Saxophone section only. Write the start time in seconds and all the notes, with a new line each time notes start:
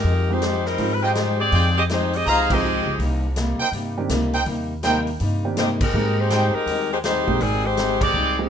Already playing: G#3 D#4 G4 A#4
0.31 G#3 D#4 G4 C5
0.66 G3 C4 D#4 A#4
0.94 B4
1.03 G#3 D#4 G4 C5
1.40 C4 G4 G#4 D5
1.78 C4 G4 G#4 D#5
1.92 G#3 D#4 G4 C5
2.15 C4 G4 G#4 D#5
2.28 D#4 G#4 C5 F5
2.53 C4 G4 G#4 D#5
5.58 A#3 D#4 G4 C5
5.82 G#3 D#4 G4 A#4
6.18 G#3 D#4 G4 C5
6.55 G#3 D#4 G4 A#4
6.93 G#3 D#4 G4 C5
7.04 G#3 D#4 G4 C5
7.41 D#3 G3 C4 G#4
7.65 G#3 D#4 G4 C5
8.01 C4 G4 G#4 D5